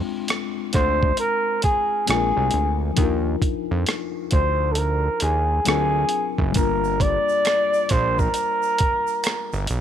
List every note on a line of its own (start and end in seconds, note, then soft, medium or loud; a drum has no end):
0.00 2.02 G#3 medium
0.00 2.03 C4 medium
0.00 2.04 D4 medium
0.00 2.05 F4 medium
0.00 2.07 G5 medium
0.28 cross-stick medium
0.28 closed hi-hat medium
0.73 1.13 D2 medium
0.73 1.16 C5 medium
0.73 kick medium
0.73 cross-stick soft
0.73 closed hi-hat medium
1.03 kick medium
1.17 1.61 A#4 medium
1.17 closed hi-hat medium
1.62 2.05 G#4 medium
1.62 kick medium
1.62 closed hi-hat medium
2.06 2.32 A#1 medium
2.06 2.97 G#3 medium
2.06 2.97 C4 medium
2.06 2.95 D4 medium
2.06 2.98 F4 medium
2.06 2.77 G#4 medium
2.06 cross-stick loud
2.06 closed hi-hat medium
2.11 2.99 A#4 medium
2.37 2.51 C2 medium
2.51 2.92 D2 medium
2.51 closed hi-hat medium
2.94 5.60 F3 medium
2.94 5.61 D4 medium
2.94 kick loud
2.94 closed hi-hat medium
2.98 3.36 D#2 loud
2.98 5.63 D#4 medium
2.98 5.64 F4 medium
3.04 5.65 A#4 medium
3.42 kick medium
3.42 closed hi-hat medium
3.71 3.85 F2 medium
3.86 cross-stick loud
3.86 closed hi-hat medium
4.31 5.09 D2 medium
4.31 4.74 C5 medium
4.31 kick medium
4.31 closed hi-hat medium
4.72 4.80 A4 medium
4.72 closed hi-hat medium
4.78 5.24 A#4 medium
5.20 5.60 D#2 medium
5.20 5.67 G#4 medium
5.20 closed hi-hat medium
5.65 6.05 D2 medium
5.65 6.55 F#3 medium
5.65 6.56 C4 medium
5.65 6.56 D4 medium
5.65 6.57 F4 medium
5.65 6.36 G#4 medium
5.65 cross-stick loud
5.65 closed hi-hat medium
5.70 6.57 A#4 medium
6.09 closed hi-hat medium
6.38 6.53 F#1 loud
6.38 kick medium
6.52 9.81 G3 medium
6.52 9.81 A#3 medium
6.52 kick loud
6.52 closed hi-hat medium
6.56 7.18 G1 loud
6.56 9.81 D4 medium
6.56 9.81 F4 medium
6.56 7.03 A#4 medium
6.56 shaker medium
6.62 9.81 A#4 medium
6.84 shaker soft
7.00 7.92 D5 loud
7.00 kick medium
7.00 closed hi-hat medium
7.29 shaker soft
7.45 finger snap medium
7.45 cross-stick medium
7.45 closed hi-hat medium
7.45 shaker medium
7.74 shaker soft
7.89 8.29 A#1 loud
7.89 8.21 C5 loud
7.89 kick medium
7.89 cross-stick soft
7.89 closed hi-hat medium
7.89 shaker soft
8.19 9.70 A#4 medium
8.19 kick medium
8.19 shaker soft
8.34 closed hi-hat medium
8.34 shaker medium
8.63 shaker soft
8.78 kick medium
8.78 closed hi-hat medium
9.07 shaker soft
9.24 finger snap medium
9.24 cross-stick loud
9.24 closed hi-hat medium
9.24 shaker medium
9.53 9.67 G1 medium
9.53 shaker soft
9.67 9.81 B1 medium
9.67 closed hi-hat medium
9.67 shaker soft